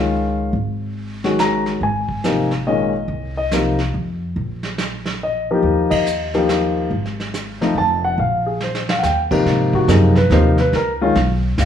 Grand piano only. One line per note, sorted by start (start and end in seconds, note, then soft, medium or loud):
0.00 0.51 D#3 medium
0.00 0.50 G#3 medium
0.00 0.51 C#4 medium
0.00 0.51 F4 medium
1.24 1.79 D#3 medium
1.24 1.79 G#3 medium
1.24 1.79 C#4 soft
1.24 1.79 F#4 medium
1.40 1.79 A#5 medium
1.83 2.48 G#5 medium
2.25 2.49 C3 medium
2.25 2.49 F3 soft
2.25 2.49 A#3 soft
2.25 2.49 D#4 medium
2.67 2.92 A#2 medium
2.67 2.92 D#3 medium
2.67 2.92 G#3 medium
2.67 2.92 C#4 medium
2.67 3.33 D#5 medium
3.37 3.77 D#5 medium
3.53 3.77 C3 medium
3.53 3.77 F3 medium
3.53 3.77 A#3 medium
3.53 3.77 D#4 medium
5.23 5.88 D#5 medium
5.51 6.04 F3 medium
5.51 6.04 A#3 medium
5.51 6.04 D#4 medium
5.51 6.05 G4 medium
5.90 6.30 D#5 medium
6.35 6.89 F3 medium
6.35 6.89 A#3 medium
6.35 6.89 D#4 medium
6.35 6.89 G4 medium
7.61 7.75 F3 medium
7.61 7.75 A3 medium
7.61 7.75 C4 medium
7.61 7.75 D#4 medium
7.78 8.04 A5 medium
8.05 8.19 F#5 medium
8.20 8.46 F5 medium
8.46 8.61 G#4 medium
8.64 8.89 C5 medium
8.90 9.04 F5 medium
8.99 9.02 F#5 medium
9.03 9.20 G5 medium
9.31 9.86 C3 medium
9.31 9.85 F3 medium
9.31 9.86 A#3 medium
9.31 9.86 D#4 medium
9.75 9.89 F#4 medium
9.88 10.13 C3 medium
9.88 10.13 F3 medium
9.88 10.13 A#3 medium
9.88 10.14 D#4 medium
9.88 10.16 G#4 medium
10.17 10.31 B4 medium
10.32 10.56 C3 medium
10.32 10.56 F3 medium
10.32 10.56 A#3 medium
10.32 10.56 D#4 medium
10.32 10.58 C5 medium
10.60 10.74 B4 medium
10.76 10.91 A#4 medium
11.01 11.15 D#3 medium
11.01 11.15 G#3 medium
11.01 11.15 C#4 medium
11.01 11.15 F4 medium
11.60 11.65 F5 medium